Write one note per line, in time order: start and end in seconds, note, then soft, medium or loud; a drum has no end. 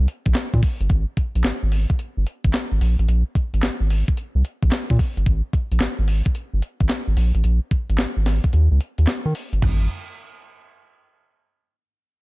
0.08 closed hi-hat medium
0.26 0.34 A#1 loud
0.26 kick loud
0.26 closed hi-hat medium
0.34 snare loud
0.34 clap medium
0.34 closed hi-hat medium
0.54 0.61 A#2 medium
0.54 kick medium
0.63 kick loud
0.63 open hi-hat medium
0.81 0.88 G1 loud
0.81 closed hi-hat medium
0.90 1.05 G#1 loud
0.90 kick loud
0.90 closed hi-hat medium
1.17 kick medium
1.17 closed hi-hat medium
1.35 1.43 A#1 medium
1.35 closed hi-hat medium
1.44 1.52 G#1 medium
1.44 snare loud
1.44 clap medium
1.44 closed hi-hat medium
1.63 1.86 G#1 medium
1.72 open hi-hat medium
1.90 kick medium
1.90 closed hi-hat medium
1.99 closed hi-hat medium
2.17 2.25 G1 medium
2.27 closed hi-hat medium
2.44 2.52 G#1 medium
2.44 kick loud
2.44 closed hi-hat medium
2.53 snare loud
2.53 clap medium
2.53 closed hi-hat medium
2.72 2.80 G#1 medium
2.81 2.96 A#1 medium
2.81 open hi-hat medium
2.99 3.07 A1 medium
2.99 closed hi-hat soft
3.08 3.23 A#1 loud
3.08 closed hi-hat medium
3.35 kick medium
3.35 closed hi-hat medium
3.54 3.61 G#1 medium
3.54 closed hi-hat medium
3.62 3.70 G#1 soft
3.62 snare loud
3.62 clap medium
3.62 closed hi-hat medium
3.80 4.04 G#1 medium
3.90 open hi-hat medium
4.08 kick medium
4.08 closed hi-hat medium
4.17 closed hi-hat medium
4.35 4.43 C2 medium
4.45 closed hi-hat medium
4.63 4.71 A#1 medium
4.63 kick loud
4.63 closed hi-hat soft
4.71 snare loud
4.71 clap medium
4.71 closed hi-hat medium
4.90 4.98 A#2 loud
4.90 kick medium
4.99 kick loud
4.99 open hi-hat medium
5.17 5.25 G1 loud
5.17 closed hi-hat medium
5.26 5.42 G#1 loud
5.26 kick loud
5.26 closed hi-hat medium
5.53 kick medium
5.53 closed hi-hat medium
5.72 5.79 A#1 medium
5.72 closed hi-hat medium
5.80 5.88 G#1 medium
5.80 snare loud
5.80 clap loud
5.80 closed hi-hat medium
5.99 6.22 G#1 medium
6.08 open hi-hat medium
6.25 kick medium
6.25 closed hi-hat medium
6.35 closed hi-hat medium
6.53 6.61 G1 medium
6.62 closed hi-hat medium
6.80 6.88 G#1 medium
6.80 kick loud
6.80 closed hi-hat soft
6.89 snare loud
6.89 clap medium
6.89 closed hi-hat medium
7.08 7.16 G#1 medium
7.17 7.32 A#1 medium
7.17 open hi-hat medium
7.35 7.43 A1 medium
7.35 closed hi-hat soft
7.44 7.60 A#1 loud
7.44 closed hi-hat medium
7.71 kick medium
7.71 closed hi-hat medium
7.90 7.98 G#1 loud
7.90 closed hi-hat medium
7.98 8.06 G#1 medium
7.98 snare loud
7.98 clap medium
7.98 closed hi-hat medium
8.17 8.40 G#1 medium
8.26 snare medium
8.26 open hi-hat medium
8.44 kick medium
8.44 closed hi-hat medium
8.53 8.69 D#2 loud
8.53 closed hi-hat medium
8.71 8.79 C#2 medium
8.81 closed hi-hat medium
8.98 9.07 D#2 medium
8.98 closed hi-hat medium
9.07 snare loud
9.07 clap medium
9.07 closed hi-hat medium
9.26 9.34 D#3 loud
9.35 open hi-hat medium
9.53 9.61 G1 medium
9.53 closed hi-hat soft
9.62 9.88 G#1 loud
9.62 kick loud
9.62 floor tom loud
9.62 crash medium